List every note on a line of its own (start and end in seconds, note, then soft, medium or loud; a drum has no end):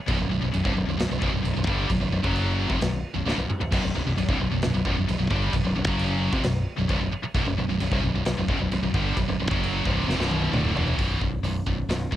0.07 0.19 B0 medium
0.07 0.17 B1 loud
0.07 0.18 F#2 loud
0.07 kick loud
0.07 china medium
0.19 0.31 B0 medium
0.19 0.28 B1 medium
0.19 0.29 F#2 medium
0.29 0.42 B0 medium
0.29 0.40 B1 medium
0.29 0.39 F#2 medium
0.41 0.54 B0 medium
0.41 0.50 B1 medium
0.41 0.51 F#2 medium
0.52 0.64 B0 medium
0.52 0.63 B1 medium
0.52 0.63 F#2 medium
0.52 china medium
0.63 0.76 C1 medium
0.63 0.74 C2 medium
0.63 0.75 G2 medium
0.63 kick loud
0.75 0.87 B0 medium
0.75 0.85 B1 medium
0.75 0.84 F#2 medium
0.86 0.99 B0 medium
0.86 0.96 B1 medium
0.86 0.96 F#2 medium
0.97 1.10 B0 medium
0.97 1.07 B1 medium
0.97 1.07 F#2 medium
0.97 snare loud
0.97 china medium
1.08 1.21 B0 medium
1.08 1.18 B1 medium
1.08 1.19 F#2 medium
1.19 1.32 B0 loud
1.19 1.30 B1 medium
1.19 1.30 F#2 loud
1.19 kick loud
1.31 1.44 B0 medium
1.31 1.41 B1 medium
1.31 1.42 F#2 medium
1.42 1.56 B0 medium
1.42 1.52 B1 medium
1.42 1.52 F#2 medium
1.42 china medium
1.53 1.65 B1 medium
1.53 1.65 F#2 medium
1.57 1.66 B0 medium
1.65 1.88 G1 medium
1.65 1.88 G2 medium
1.65 1.88 D3 medium
1.65 1.89 G3 medium
1.65 kick loud
1.88 2.00 B0 medium
1.88 1.99 B1 medium
1.88 2.00 F#2 medium
1.88 kick loud
1.88 china medium
2.00 2.12 B0 medium
2.00 2.12 B1 medium
2.00 2.11 F#2 medium
2.12 2.23 B0 medium
2.12 2.24 B1 medium
2.12 2.23 F#2 medium
2.24 2.66 F#1 medium
2.24 2.68 F#2 medium
2.24 2.69 C#3 medium
2.24 2.69 F#3 medium
2.24 kick loud
2.35 china medium
2.69 2.80 F1 loud
2.69 2.80 F2 medium
2.69 2.80 C3 loud
2.69 kick loud
2.81 3.02 B0 medium
2.81 2.99 B1 medium
2.81 2.99 F#2 medium
2.81 snare loud
2.81 china medium
3.15 3.26 B0 medium
3.15 3.26 B1 medium
3.15 3.27 F#2 medium
3.26 3.37 C1 medium
3.26 3.37 C2 loud
3.26 3.37 G2 loud
3.26 snare medium
3.38 3.48 B0 medium
3.38 3.48 B1 medium
3.38 3.49 F#2 medium
3.49 muted distorted electric guitar stroke medium
3.49 muted overdriven electric guitar stroke medium
3.49 muted fingered electric bass stroke soft
3.49 mid tom medium
3.60 muted overdriven electric guitar stroke medium
3.60 muted distorted electric guitar stroke medium
3.60 muted fingered electric bass stroke soft
3.60 floor tom medium
3.72 3.82 B0 medium
3.72 3.82 B1 loud
3.72 3.83 F#2 loud
3.72 kick loud
3.72 crash loud
3.72 china medium
3.83 3.94 B0 medium
3.83 3.94 B1 medium
3.83 3.94 F#2 medium
3.95 4.05 B0 medium
3.95 4.06 B1 medium
3.95 4.06 F#2 medium
4.06 4.17 B0 medium
4.06 4.16 B1 medium
4.06 4.17 F#2 medium
4.17 4.28 B0 medium
4.17 4.29 B1 medium
4.17 4.29 F#2 medium
4.17 china medium
4.28 4.39 C1 medium
4.28 4.39 C2 medium
4.28 4.39 G2 loud
4.28 kick loud
4.40 4.50 B0 medium
4.40 4.50 B1 medium
4.40 4.51 F#2 medium
4.51 4.62 B0 medium
4.51 4.61 B1 medium
4.51 4.62 F#2 medium
4.62 4.74 B0 medium
4.62 4.74 B1 medium
4.62 4.74 F#2 medium
4.62 snare loud
4.62 china medium
4.75 4.85 B0 medium
4.75 4.84 B1 medium
4.75 4.84 F#2 medium
4.85 4.96 B0 medium
4.85 4.95 B1 medium
4.85 4.95 F#2 medium
4.85 kick loud
4.96 5.08 B0 medium
4.96 5.06 B1 medium
4.96 5.06 F#2 medium
5.07 5.19 B0 medium
5.07 5.17 B1 medium
5.07 5.18 F#2 medium
5.07 china medium
5.19 5.30 B0 medium
5.19 5.29 B1 medium
5.19 5.30 F#2 medium
5.30 5.52 G1 medium
5.30 5.52 G2 medium
5.30 5.52 D3 loud
5.30 5.53 G3 loud
5.30 kick loud
5.52 5.64 B0 medium
5.52 5.62 B1 medium
5.52 5.62 F#2 medium
5.52 kick loud
5.52 china medium
5.63 5.75 B0 medium
5.63 5.74 B1 medium
5.63 5.75 F#2 medium
5.75 5.87 B0 medium
5.75 5.86 B1 medium
5.75 5.85 F#2 medium
5.86 6.30 F#1 medium
5.86 6.31 F#2 medium
5.86 6.32 C#3 medium
5.86 6.32 F#3 medium
5.86 kick loud
5.99 china medium
6.32 6.43 F1 medium
6.32 6.43 F2 medium
6.32 6.43 C3 medium
6.32 kick loud
6.43 6.65 B0 medium
6.43 6.62 B1 medium
6.43 6.62 F#2 medium
6.43 snare loud
6.43 china medium
6.77 6.89 B0 medium
6.77 6.88 B1 medium
6.77 6.89 F#2 medium
6.88 7.00 C1 loud
6.88 6.99 C2 medium
6.88 7.00 G2 loud
6.88 kick loud
6.88 china medium
7.00 7.12 B0 medium
7.00 7.10 B1 medium
7.00 7.12 F#2 medium
7.12 muted distorted electric guitar stroke medium
7.12 muted fingered electric bass stroke soft
7.12 muted overdriven electric guitar stroke medium
7.23 muted distorted electric guitar stroke medium
7.23 muted fingered electric bass stroke soft
7.23 muted overdriven electric guitar stroke medium
7.34 7.45 B0 medium
7.34 7.45 B1 loud
7.34 7.45 F#2 loud
7.34 kick loud
7.34 china medium
7.46 7.57 B0 medium
7.46 7.56 B1 medium
7.46 7.57 F#2 medium
7.57 7.68 B0 medium
7.57 7.68 B1 medium
7.57 7.68 F#2 medium
7.69 7.80 B0 medium
7.69 7.79 B1 medium
7.69 7.80 F#2 medium
7.80 7.91 B0 medium
7.80 7.91 B1 medium
7.80 7.91 F#2 medium
7.80 china medium
7.91 8.02 C1 loud
7.91 8.02 C2 medium
7.91 8.02 G2 loud
7.91 kick loud
8.02 8.14 B0 medium
8.02 8.13 B1 medium
8.02 8.13 F#2 medium
8.14 8.26 B0 medium
8.14 8.24 B1 medium
8.14 8.25 F#2 medium
8.25 8.37 B0 medium
8.25 8.36 B1 medium
8.25 8.36 F#2 medium
8.25 snare loud
8.25 china medium
8.37 8.47 B0 medium
8.37 8.47 B1 medium
8.37 8.48 F#2 medium
8.48 8.59 B0 medium
8.48 8.59 B1 medium
8.48 8.59 F#2 loud
8.48 kick loud
8.60 8.71 B0 medium
8.60 8.70 B1 medium
8.60 8.71 F#2 medium
8.72 8.82 B0 medium
8.72 8.82 B1 medium
8.72 8.82 F#2 medium
8.72 china medium
8.83 8.93 B0 medium
8.83 8.94 B1 medium
8.83 8.94 F#2 medium
8.94 9.15 G1 loud
8.94 9.16 G2 medium
8.94 9.17 D3 loud
8.94 9.17 G3 medium
8.94 kick loud
9.17 9.27 B0 medium
9.17 9.28 B1 medium
9.17 9.28 F#2 medium
9.17 kick loud
9.17 china medium
9.28 9.39 B0 medium
9.28 9.38 B1 medium
9.28 9.39 F#2 medium
9.40 9.50 B0 medium
9.40 9.50 B1 medium
9.40 9.49 F#2 medium
9.50 9.83 F#1 medium
9.50 9.84 F#2 medium
9.50 9.84 C#3 loud
9.50 9.84 F#3 medium
9.50 kick loud
9.63 china medium
9.85 10.06 C1 medium
9.85 10.07 C2 medium
9.85 10.07 G2 medium
9.85 10.06 C3 loud
9.85 kick loud
10.07 10.18 F1 medium
10.07 10.18 F2 medium
10.07 10.18 C3 medium
10.07 snare medium
10.18 10.50 B0 loud
10.18 10.52 B1 medium
10.18 10.52 F#2 medium
10.18 10.52 B2 medium
10.18 snare medium
10.31 high tom medium
10.42 high tom medium
10.52 10.74 D1 loud
10.52 10.73 D2 loud
10.52 10.74 A2 loud
10.52 10.75 D3 loud
10.52 mid tom medium
10.65 mid tom medium
10.74 10.97 E1 medium
10.74 10.97 E2 medium
10.74 10.97 B2 medium
10.74 10.97 E3 medium
10.74 floor tom loud
10.88 floor tom medium
10.97 11.16 B0 medium
10.97 11.18 B1 medium
10.97 11.19 F#2 medium
10.97 11.20 B2 medium
10.97 kick loud
10.97 open hi-hat medium
11.19 11.39 B0 medium
11.19 11.41 B1 medium
11.19 11.41 F#2 medium
11.19 kick medium
11.43 11.61 B0 medium
11.43 11.64 B1 medium
11.43 11.64 F#2 medium
11.43 open hi-hat soft
11.67 11.84 B0 medium
11.67 11.87 B1 medium
11.67 11.87 F#2 medium
11.67 kick medium
11.89 12.06 B0 medium
11.89 12.10 B1 medium
11.89 12.10 F#2 medium
11.89 snare loud
11.89 open hi-hat soft
12.11 12.16 B0 medium
12.11 12.16 B1 medium
12.11 12.16 F#2 medium
12.11 kick medium